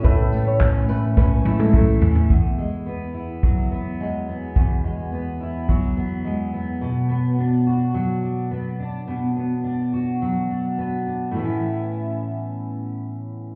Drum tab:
TB |--x---x---------|----------------|----------------|----------------|
CP |----x-----------|----------------|----------------|----------------|
SD |--------o-------|----------------|----------------|----------------|
T1 |----------oo----|----------------|----------------|----------------|
FT |--------------oo|----------------|----------------|----------------|
BD |o---o---o---o---|o-------o-------|o-------o-------|----------------|

TB |----------------|----------------|
CP |----------------|----------------|
SD |----------------|----------------|
T1 |----------------|----------------|
FT |----------------|----------------|
BD |----------------|----------------|